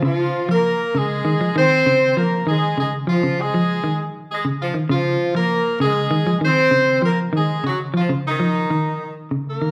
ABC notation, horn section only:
X:1
M:4/4
L:1/16
Q:1/4=99
K:Bbm
V:1 name="Horn section"
[F,F]3 [B,B]3 [A,A]4 [Cc]4 [B,B]2 | [A,A]2 [A,A]2 [F,F]2 [A,A]4 z2 [A,A]2 [F,F]2 | [F,F]3 [B,B]3 [A,A]4 [Cc]4 [B,B]2 | [A,A]2 [G,G]2 [F,F]2 [E,E]6 z2 [B,B]2 |]